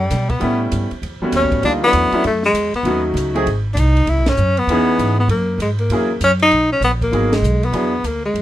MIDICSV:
0, 0, Header, 1, 6, 480
1, 0, Start_track
1, 0, Tempo, 305033
1, 648, Time_signature, 4, 2, 24, 8
1, 13248, End_track
2, 0, Start_track
2, 0, Title_t, "Upright piano"
2, 0, Program_c, 0, 0
2, 627, Note_on_c, 0, 55, 60
2, 632, Note_on_c, 0, 57, 56
2, 644, Note_on_c, 0, 59, 58
2, 654, Note_on_c, 0, 61, 57
2, 657, Note_on_c, 0, 64, 61
2, 1358, Note_off_c, 0, 55, 0
2, 1361, Note_off_c, 0, 57, 0
2, 1366, Note_off_c, 0, 59, 0
2, 1371, Note_off_c, 0, 61, 0
2, 1373, Note_off_c, 0, 64, 0
2, 1916, Note_on_c, 0, 55, 63
2, 1924, Note_on_c, 0, 57, 58
2, 1933, Note_on_c, 0, 59, 57
2, 1944, Note_on_c, 0, 61, 58
2, 1952, Note_on_c, 0, 66, 66
2, 2535, Note_off_c, 0, 55, 0
2, 2539, Note_off_c, 0, 57, 0
2, 2544, Note_off_c, 0, 59, 0
2, 2549, Note_off_c, 0, 61, 0
2, 2553, Note_off_c, 0, 66, 0
2, 2573, Note_on_c, 0, 58, 50
2, 2575, Note_on_c, 0, 55, 57
2, 2584, Note_on_c, 0, 62, 54
2, 2592, Note_on_c, 0, 63, 53
2, 2610, Note_on_c, 0, 65, 63
2, 2841, Note_off_c, 0, 55, 0
2, 2841, Note_off_c, 0, 58, 0
2, 2846, Note_off_c, 0, 62, 0
2, 2850, Note_off_c, 0, 63, 0
2, 2856, Note_on_c, 0, 54, 60
2, 2859, Note_off_c, 0, 65, 0
2, 2871, Note_on_c, 0, 57, 51
2, 2880, Note_on_c, 0, 61, 50
2, 2888, Note_on_c, 0, 62, 48
2, 2888, Note_on_c, 0, 64, 64
2, 3282, Note_off_c, 0, 54, 0
2, 3289, Note_off_c, 0, 57, 0
2, 3294, Note_off_c, 0, 61, 0
2, 3297, Note_off_c, 0, 62, 0
2, 3297, Note_off_c, 0, 64, 0
2, 3342, Note_on_c, 0, 54, 72
2, 3355, Note_on_c, 0, 57, 68
2, 3359, Note_on_c, 0, 62, 62
2, 3367, Note_on_c, 0, 61, 65
2, 3369, Note_on_c, 0, 64, 80
2, 3506, Note_off_c, 0, 54, 0
2, 3513, Note_off_c, 0, 57, 0
2, 3515, Note_off_c, 0, 62, 0
2, 3519, Note_off_c, 0, 61, 0
2, 3519, Note_off_c, 0, 64, 0
2, 4482, Note_on_c, 0, 57, 54
2, 4486, Note_on_c, 0, 54, 68
2, 4497, Note_on_c, 0, 61, 57
2, 4504, Note_on_c, 0, 63, 57
2, 4511, Note_on_c, 0, 66, 74
2, 5205, Note_off_c, 0, 57, 0
2, 5207, Note_off_c, 0, 54, 0
2, 5212, Note_off_c, 0, 61, 0
2, 5216, Note_off_c, 0, 63, 0
2, 5219, Note_off_c, 0, 66, 0
2, 5254, Note_on_c, 0, 54, 67
2, 5260, Note_on_c, 0, 57, 70
2, 5274, Note_on_c, 0, 60, 68
2, 5280, Note_on_c, 0, 63, 69
2, 5287, Note_on_c, 0, 68, 90
2, 5421, Note_off_c, 0, 54, 0
2, 5425, Note_off_c, 0, 57, 0
2, 5432, Note_off_c, 0, 60, 0
2, 5435, Note_off_c, 0, 63, 0
2, 5438, Note_off_c, 0, 68, 0
2, 7388, Note_on_c, 0, 52, 77
2, 7396, Note_on_c, 0, 59, 66
2, 7401, Note_on_c, 0, 61, 65
2, 7416, Note_on_c, 0, 63, 64
2, 7420, Note_on_c, 0, 68, 80
2, 8097, Note_off_c, 0, 52, 0
2, 8102, Note_off_c, 0, 59, 0
2, 8104, Note_off_c, 0, 61, 0
2, 8111, Note_off_c, 0, 63, 0
2, 8113, Note_off_c, 0, 68, 0
2, 9298, Note_on_c, 0, 54, 58
2, 9312, Note_on_c, 0, 58, 59
2, 9319, Note_on_c, 0, 61, 62
2, 9319, Note_on_c, 0, 64, 53
2, 9335, Note_on_c, 0, 68, 72
2, 9562, Note_off_c, 0, 54, 0
2, 9570, Note_off_c, 0, 58, 0
2, 9573, Note_off_c, 0, 61, 0
2, 9573, Note_off_c, 0, 64, 0
2, 9581, Note_off_c, 0, 68, 0
2, 11204, Note_on_c, 0, 54, 61
2, 11204, Note_on_c, 0, 58, 56
2, 11214, Note_on_c, 0, 59, 54
2, 11220, Note_on_c, 0, 63, 56
2, 11231, Note_on_c, 0, 68, 67
2, 11476, Note_off_c, 0, 54, 0
2, 11476, Note_off_c, 0, 58, 0
2, 11481, Note_off_c, 0, 59, 0
2, 11484, Note_off_c, 0, 63, 0
2, 11489, Note_off_c, 0, 68, 0
2, 12165, Note_on_c, 0, 59, 48
2, 12167, Note_on_c, 0, 54, 54
2, 12170, Note_on_c, 0, 62, 47
2, 12175, Note_on_c, 0, 64, 50
2, 12193, Note_on_c, 0, 68, 58
2, 12437, Note_off_c, 0, 59, 0
2, 12438, Note_off_c, 0, 54, 0
2, 12440, Note_off_c, 0, 62, 0
2, 12442, Note_off_c, 0, 64, 0
2, 12451, Note_off_c, 0, 68, 0
2, 13248, End_track
3, 0, Start_track
3, 0, Title_t, "Tenor saxophone"
3, 0, Program_c, 1, 66
3, 0, Note_on_c, 1, 55, 80
3, 466, Note_on_c, 1, 59, 74
3, 490, Note_off_c, 1, 55, 0
3, 947, Note_off_c, 1, 59, 0
3, 2135, Note_on_c, 1, 61, 88
3, 2559, Note_off_c, 1, 61, 0
3, 2593, Note_on_c, 1, 62, 85
3, 2722, Note_off_c, 1, 62, 0
3, 2888, Note_on_c, 1, 59, 92
3, 3491, Note_off_c, 1, 59, 0
3, 3564, Note_on_c, 1, 57, 76
3, 3826, Note_off_c, 1, 57, 0
3, 3863, Note_on_c, 1, 56, 82
3, 4293, Note_off_c, 1, 56, 0
3, 4333, Note_on_c, 1, 59, 74
3, 4767, Note_off_c, 1, 59, 0
3, 5882, Note_on_c, 1, 62, 65
3, 5966, Note_on_c, 1, 63, 88
3, 5990, Note_off_c, 1, 62, 0
3, 6442, Note_on_c, 1, 64, 81
3, 6466, Note_off_c, 1, 63, 0
3, 6750, Note_on_c, 1, 61, 91
3, 6774, Note_off_c, 1, 64, 0
3, 7217, Note_on_c, 1, 59, 90
3, 7240, Note_off_c, 1, 61, 0
3, 8161, Note_off_c, 1, 59, 0
3, 8178, Note_on_c, 1, 59, 76
3, 8330, Note_off_c, 1, 59, 0
3, 8344, Note_on_c, 1, 58, 82
3, 8782, Note_off_c, 1, 58, 0
3, 8840, Note_on_c, 1, 56, 75
3, 8967, Note_off_c, 1, 56, 0
3, 9121, Note_on_c, 1, 58, 74
3, 9727, Note_off_c, 1, 58, 0
3, 9814, Note_on_c, 1, 61, 93
3, 9938, Note_off_c, 1, 61, 0
3, 10108, Note_on_c, 1, 63, 90
3, 10535, Note_off_c, 1, 63, 0
3, 10576, Note_on_c, 1, 61, 85
3, 10729, Note_off_c, 1, 61, 0
3, 10764, Note_on_c, 1, 59, 76
3, 10891, Note_off_c, 1, 59, 0
3, 11066, Note_on_c, 1, 58, 82
3, 11544, Note_on_c, 1, 56, 90
3, 11568, Note_off_c, 1, 58, 0
3, 12036, Note_on_c, 1, 59, 77
3, 12059, Note_off_c, 1, 56, 0
3, 12691, Note_on_c, 1, 58, 81
3, 12715, Note_off_c, 1, 59, 0
3, 12971, Note_off_c, 1, 58, 0
3, 12984, Note_on_c, 1, 56, 80
3, 13248, Note_off_c, 1, 56, 0
3, 13248, End_track
4, 0, Start_track
4, 0, Title_t, "Upright bass"
4, 0, Program_c, 2, 32
4, 165, Note_on_c, 2, 47, 89
4, 632, Note_off_c, 2, 47, 0
4, 659, Note_on_c, 2, 45, 86
4, 1119, Note_off_c, 2, 45, 0
4, 1133, Note_on_c, 2, 43, 81
4, 1410, Note_off_c, 2, 43, 0
4, 1602, Note_on_c, 2, 40, 74
4, 1884, Note_off_c, 2, 40, 0
4, 2083, Note_on_c, 2, 39, 83
4, 2254, Note_on_c, 2, 37, 51
4, 2278, Note_off_c, 2, 39, 0
4, 2403, Note_off_c, 2, 37, 0
4, 2413, Note_on_c, 2, 33, 65
4, 2554, Note_off_c, 2, 33, 0
4, 2564, Note_on_c, 2, 38, 78
4, 3031, Note_off_c, 2, 38, 0
4, 3039, Note_on_c, 2, 40, 79
4, 3322, Note_off_c, 2, 40, 0
4, 3527, Note_on_c, 2, 42, 69
4, 3976, Note_off_c, 2, 42, 0
4, 3986, Note_on_c, 2, 40, 75
4, 4275, Note_off_c, 2, 40, 0
4, 4458, Note_on_c, 2, 39, 88
4, 4927, Note_off_c, 2, 39, 0
4, 4937, Note_on_c, 2, 37, 90
4, 5416, Note_off_c, 2, 37, 0
4, 5440, Note_on_c, 2, 32, 68
4, 5892, Note_off_c, 2, 32, 0
4, 5901, Note_on_c, 2, 36, 89
4, 6379, Note_off_c, 2, 36, 0
4, 6398, Note_on_c, 2, 37, 81
4, 6570, Note_off_c, 2, 37, 0
4, 6570, Note_on_c, 2, 35, 58
4, 6719, Note_off_c, 2, 35, 0
4, 6728, Note_on_c, 2, 32, 60
4, 6876, Note_off_c, 2, 32, 0
4, 6886, Note_on_c, 2, 42, 83
4, 7340, Note_off_c, 2, 42, 0
4, 7349, Note_on_c, 2, 40, 76
4, 7823, Note_off_c, 2, 40, 0
4, 7843, Note_on_c, 2, 44, 82
4, 8296, Note_off_c, 2, 44, 0
4, 8306, Note_on_c, 2, 42, 84
4, 8768, Note_off_c, 2, 42, 0
4, 8777, Note_on_c, 2, 44, 75
4, 9256, Note_off_c, 2, 44, 0
4, 9274, Note_on_c, 2, 40, 72
4, 9745, Note_off_c, 2, 40, 0
4, 9762, Note_on_c, 2, 42, 87
4, 10230, Note_off_c, 2, 42, 0
4, 10249, Note_on_c, 2, 35, 71
4, 10699, Note_off_c, 2, 35, 0
4, 10708, Note_on_c, 2, 34, 82
4, 11183, Note_off_c, 2, 34, 0
4, 11196, Note_on_c, 2, 32, 69
4, 11667, Note_off_c, 2, 32, 0
4, 11675, Note_on_c, 2, 35, 82
4, 12143, Note_off_c, 2, 35, 0
4, 12153, Note_on_c, 2, 40, 79
4, 12626, Note_off_c, 2, 40, 0
4, 12641, Note_on_c, 2, 38, 75
4, 13110, Note_off_c, 2, 38, 0
4, 13123, Note_on_c, 2, 42, 72
4, 13248, Note_off_c, 2, 42, 0
4, 13248, End_track
5, 0, Start_track
5, 0, Title_t, "Muted upright bass strokes"
5, 1439, Note_on_c, 9, 29, 38
5, 1597, Note_off_c, 9, 29, 0
5, 1897, Note_on_c, 9, 29, 36
5, 2054, Note_off_c, 9, 29, 0
5, 3336, Note_on_c, 9, 29, 34
5, 3493, Note_off_c, 9, 29, 0
5, 4309, Note_on_c, 9, 29, 41
5, 4466, Note_off_c, 9, 29, 0
5, 13248, End_track
6, 0, Start_track
6, 0, Title_t, "Drums"
6, 165, Note_on_c, 9, 38, 37
6, 165, Note_on_c, 9, 44, 63
6, 165, Note_on_c, 9, 51, 65
6, 323, Note_off_c, 9, 38, 0
6, 323, Note_off_c, 9, 44, 0
6, 323, Note_off_c, 9, 51, 0
6, 463, Note_on_c, 9, 51, 42
6, 469, Note_on_c, 9, 36, 48
6, 621, Note_off_c, 9, 51, 0
6, 627, Note_off_c, 9, 36, 0
6, 639, Note_on_c, 9, 51, 57
6, 796, Note_off_c, 9, 51, 0
6, 1127, Note_on_c, 9, 44, 55
6, 1127, Note_on_c, 9, 51, 63
6, 1284, Note_off_c, 9, 44, 0
6, 1284, Note_off_c, 9, 51, 0
6, 1431, Note_on_c, 9, 51, 36
6, 1588, Note_off_c, 9, 51, 0
6, 1619, Note_on_c, 9, 51, 53
6, 1776, Note_off_c, 9, 51, 0
6, 2082, Note_on_c, 9, 38, 38
6, 2082, Note_on_c, 9, 44, 64
6, 2082, Note_on_c, 9, 51, 67
6, 2239, Note_off_c, 9, 38, 0
6, 2239, Note_off_c, 9, 44, 0
6, 2239, Note_off_c, 9, 51, 0
6, 2387, Note_on_c, 9, 36, 54
6, 2388, Note_on_c, 9, 51, 40
6, 2544, Note_off_c, 9, 36, 0
6, 2545, Note_off_c, 9, 51, 0
6, 2565, Note_on_c, 9, 51, 59
6, 2723, Note_off_c, 9, 51, 0
6, 3036, Note_on_c, 9, 44, 54
6, 3036, Note_on_c, 9, 51, 71
6, 3193, Note_off_c, 9, 44, 0
6, 3193, Note_off_c, 9, 51, 0
6, 3341, Note_on_c, 9, 51, 36
6, 3498, Note_off_c, 9, 51, 0
6, 3523, Note_on_c, 9, 51, 54
6, 3681, Note_off_c, 9, 51, 0
6, 3822, Note_on_c, 9, 38, 35
6, 3980, Note_off_c, 9, 38, 0
6, 4007, Note_on_c, 9, 44, 54
6, 4007, Note_on_c, 9, 51, 75
6, 4165, Note_off_c, 9, 44, 0
6, 4165, Note_off_c, 9, 51, 0
6, 4312, Note_on_c, 9, 51, 41
6, 4469, Note_off_c, 9, 51, 0
6, 4485, Note_on_c, 9, 51, 57
6, 4643, Note_off_c, 9, 51, 0
6, 4983, Note_on_c, 9, 44, 56
6, 4983, Note_on_c, 9, 51, 62
6, 5141, Note_off_c, 9, 44, 0
6, 5141, Note_off_c, 9, 51, 0
6, 5278, Note_on_c, 9, 51, 41
6, 5436, Note_off_c, 9, 51, 0
6, 5456, Note_on_c, 9, 51, 58
6, 5613, Note_off_c, 9, 51, 0
6, 5929, Note_on_c, 9, 44, 64
6, 5929, Note_on_c, 9, 51, 75
6, 6087, Note_off_c, 9, 44, 0
6, 6087, Note_off_c, 9, 51, 0
6, 6241, Note_on_c, 9, 51, 42
6, 6399, Note_off_c, 9, 51, 0
6, 6405, Note_on_c, 9, 51, 56
6, 6562, Note_off_c, 9, 51, 0
6, 6707, Note_on_c, 9, 38, 76
6, 6707, Note_on_c, 9, 51, 56
6, 6864, Note_off_c, 9, 38, 0
6, 6864, Note_off_c, 9, 51, 0
6, 6875, Note_on_c, 9, 44, 58
6, 7032, Note_off_c, 9, 44, 0
6, 7193, Note_on_c, 9, 51, 42
6, 7350, Note_off_c, 9, 51, 0
6, 7377, Note_on_c, 9, 51, 62
6, 7535, Note_off_c, 9, 51, 0
6, 7856, Note_on_c, 9, 44, 61
6, 7856, Note_on_c, 9, 51, 63
6, 8014, Note_off_c, 9, 44, 0
6, 8014, Note_off_c, 9, 51, 0
6, 8328, Note_on_c, 9, 51, 59
6, 8485, Note_off_c, 9, 51, 0
6, 8812, Note_on_c, 9, 44, 56
6, 8812, Note_on_c, 9, 51, 66
6, 8969, Note_off_c, 9, 44, 0
6, 8969, Note_off_c, 9, 51, 0
6, 9103, Note_on_c, 9, 51, 37
6, 9261, Note_off_c, 9, 51, 0
6, 9282, Note_on_c, 9, 51, 64
6, 9439, Note_off_c, 9, 51, 0
6, 9767, Note_on_c, 9, 44, 66
6, 9767, Note_on_c, 9, 51, 66
6, 9925, Note_off_c, 9, 44, 0
6, 9925, Note_off_c, 9, 51, 0
6, 10063, Note_on_c, 9, 51, 44
6, 10220, Note_off_c, 9, 51, 0
6, 10250, Note_on_c, 9, 51, 49
6, 10408, Note_off_c, 9, 51, 0
6, 10737, Note_on_c, 9, 44, 55
6, 10737, Note_on_c, 9, 51, 58
6, 10894, Note_off_c, 9, 44, 0
6, 10894, Note_off_c, 9, 51, 0
6, 11038, Note_on_c, 9, 36, 47
6, 11047, Note_on_c, 9, 51, 39
6, 11196, Note_off_c, 9, 36, 0
6, 11205, Note_off_c, 9, 51, 0
6, 11219, Note_on_c, 9, 51, 51
6, 11377, Note_off_c, 9, 51, 0
6, 11528, Note_on_c, 9, 38, 79
6, 11528, Note_on_c, 9, 51, 59
6, 11685, Note_off_c, 9, 38, 0
6, 11685, Note_off_c, 9, 51, 0
6, 11711, Note_on_c, 9, 44, 63
6, 11869, Note_off_c, 9, 44, 0
6, 12008, Note_on_c, 9, 51, 38
6, 12166, Note_off_c, 9, 51, 0
6, 12170, Note_on_c, 9, 51, 60
6, 12328, Note_off_c, 9, 51, 0
6, 12655, Note_on_c, 9, 44, 43
6, 12655, Note_on_c, 9, 51, 59
6, 12813, Note_off_c, 9, 44, 0
6, 12813, Note_off_c, 9, 51, 0
6, 13147, Note_on_c, 9, 51, 55
6, 13248, Note_off_c, 9, 51, 0
6, 13248, End_track
0, 0, End_of_file